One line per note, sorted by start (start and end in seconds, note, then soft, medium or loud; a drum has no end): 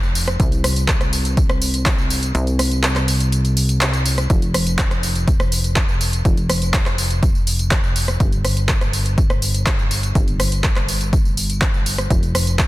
0.00 0.37 F1 medium
0.00 tambourine soft
0.15 open hi-hat loud
0.15 tambourine medium
0.28 cross-stick medium
0.28 closed hi-hat medium
0.28 tambourine soft
0.40 2.32 C2 medium
0.40 kick loud
0.40 closed hi-hat medium
0.40 tambourine soft
0.52 closed hi-hat soft
0.52 tambourine soft
0.64 cross-stick medium
0.64 open hi-hat loud
0.64 tambourine medium
0.76 closed hi-hat medium
0.76 tambourine soft
0.88 kick loud
0.88 clap loud
0.88 closed hi-hat medium
0.88 tambourine soft
1.01 cross-stick medium
1.01 closed hi-hat soft
1.01 tambourine soft
1.13 open hi-hat loud
1.13 tambourine medium
1.25 closed hi-hat medium
1.25 tambourine soft
1.37 kick loud
1.37 closed hi-hat medium
1.37 tambourine soft
1.49 cross-stick medium
1.49 tambourine soft
1.62 open hi-hat loud
1.62 tambourine medium
1.74 closed hi-hat medium
1.74 tambourine soft
1.86 kick loud
1.86 clap loud
1.86 closed hi-hat medium
1.86 tambourine soft
1.98 tambourine soft
2.10 open hi-hat loud
2.10 tambourine medium
2.23 closed hi-hat medium
2.23 tambourine soft
2.35 4.28 C2 medium
2.35 closed hi-hat medium
2.35 tambourine soft
2.47 closed hi-hat soft
2.47 tambourine soft
2.59 cross-stick medium
2.59 open hi-hat loud
2.59 tambourine medium
2.71 closed hi-hat medium
2.71 tambourine soft
2.83 clap loud
2.83 closed hi-hat medium
2.83 tambourine soft
2.96 cross-stick medium
2.96 clap soft
2.96 closed hi-hat soft
2.96 tambourine soft
3.08 open hi-hat loud
3.08 tambourine medium
3.20 closed hi-hat medium
3.20 tambourine soft
3.32 closed hi-hat medium
3.32 tambourine soft
3.45 closed hi-hat soft
3.45 tambourine soft
3.57 open hi-hat loud
3.57 tambourine medium
3.69 closed hi-hat medium
3.69 tambourine soft
3.81 clap loud
3.81 closed hi-hat medium
3.81 tambourine soft
3.93 closed hi-hat soft
3.93 tambourine soft
4.06 open hi-hat loud
4.06 tambourine medium
4.18 cross-stick medium
4.18 closed hi-hat medium
4.18 tambourine soft
4.30 6.23 F1 medium
4.30 kick loud
4.30 closed hi-hat medium
4.30 tambourine soft
4.42 closed hi-hat soft
4.42 tambourine soft
4.54 cross-stick medium
4.54 open hi-hat loud
4.54 tambourine medium
4.67 closed hi-hat medium
4.67 tambourine soft
4.79 kick loud
4.79 clap loud
4.79 closed hi-hat medium
4.79 tambourine soft
4.91 cross-stick medium
4.91 closed hi-hat soft
4.91 tambourine soft
5.03 open hi-hat loud
5.03 tambourine medium
5.15 closed hi-hat medium
5.15 tambourine soft
5.28 kick loud
5.28 closed hi-hat medium
5.28 tambourine soft
5.40 cross-stick medium
5.40 tambourine soft
5.52 open hi-hat loud
5.52 tambourine medium
5.64 closed hi-hat medium
5.64 tambourine soft
5.76 kick loud
5.76 clap loud
5.76 closed hi-hat medium
5.76 tambourine soft
5.89 tambourine soft
6.01 open hi-hat loud
6.01 tambourine medium
6.13 closed hi-hat medium
6.13 tambourine soft
6.25 8.18 F1 medium
6.25 kick loud
6.25 closed hi-hat medium
6.25 tambourine soft
6.37 closed hi-hat soft
6.37 tambourine soft
6.50 cross-stick medium
6.50 open hi-hat loud
6.50 tambourine medium
6.62 closed hi-hat medium
6.62 tambourine soft
6.74 kick loud
6.74 clap loud
6.74 closed hi-hat medium
6.74 tambourine soft
6.86 cross-stick medium
6.86 clap soft
6.86 closed hi-hat soft
6.86 tambourine soft
6.98 open hi-hat loud
6.98 tambourine medium
7.11 closed hi-hat medium
7.11 tambourine soft
7.23 kick loud
7.23 closed hi-hat medium
7.23 tambourine soft
7.35 tambourine soft
7.47 open hi-hat loud
7.47 tambourine medium
7.59 closed hi-hat medium
7.59 tambourine soft
7.71 kick loud
7.71 clap loud
7.71 closed hi-hat medium
7.71 tambourine soft
7.84 tambourine soft
7.96 open hi-hat loud
7.96 tambourine medium
8.08 cross-stick medium
8.08 closed hi-hat medium
8.08 tambourine soft
8.20 10.13 G1 medium
8.20 kick loud
8.20 closed hi-hat medium
8.20 tambourine soft
8.32 closed hi-hat soft
8.32 tambourine soft
8.45 cross-stick medium
8.45 open hi-hat loud
8.45 tambourine medium
8.57 closed hi-hat medium
8.57 tambourine soft
8.69 kick loud
8.69 clap loud
8.69 closed hi-hat medium
8.69 tambourine soft
8.81 cross-stick medium
8.81 closed hi-hat soft
8.81 tambourine soft
8.93 open hi-hat loud
8.93 tambourine medium
9.06 closed hi-hat medium
9.06 tambourine soft
9.18 kick loud
9.18 closed hi-hat medium
9.18 tambourine soft
9.30 cross-stick medium
9.30 tambourine soft
9.42 open hi-hat loud
9.42 tambourine medium
9.54 closed hi-hat medium
9.54 tambourine soft
9.66 kick loud
9.66 clap loud
9.66 closed hi-hat medium
9.66 tambourine soft
9.79 tambourine soft
9.91 open hi-hat loud
9.91 tambourine medium
10.03 closed hi-hat medium
10.03 tambourine soft
10.15 12.08 G1 medium
10.15 kick loud
10.15 closed hi-hat medium
10.15 tambourine soft
10.28 closed hi-hat soft
10.28 tambourine soft
10.40 cross-stick medium
10.40 open hi-hat loud
10.40 tambourine medium
10.52 closed hi-hat medium
10.52 tambourine soft
10.64 kick loud
10.64 clap loud
10.64 closed hi-hat medium
10.64 tambourine soft
10.76 cross-stick medium
10.76 clap soft
10.76 closed hi-hat soft
10.76 tambourine soft
10.89 open hi-hat loud
10.89 tambourine medium
11.01 closed hi-hat medium
11.01 tambourine soft
11.13 kick loud
11.13 closed hi-hat medium
11.13 tambourine soft
11.25 tambourine soft
11.37 open hi-hat loud
11.37 tambourine medium
11.50 closed hi-hat medium
11.50 tambourine soft
11.61 kick loud
11.61 clap loud
11.61 closed hi-hat medium
11.61 tambourine soft
11.74 tambourine soft
11.86 open hi-hat loud
11.86 tambourine medium
11.98 cross-stick medium
11.98 closed hi-hat soft
11.98 tambourine soft
12.10 12.68 F1 medium
12.10 kick loud
12.10 closed hi-hat medium
12.10 tambourine soft
12.23 closed hi-hat soft
12.23 tambourine soft
12.35 cross-stick medium
12.35 open hi-hat loud
12.35 tambourine medium
12.47 closed hi-hat medium
12.47 tambourine soft
12.59 kick loud
12.59 clap loud
12.59 closed hi-hat medium
12.59 tambourine soft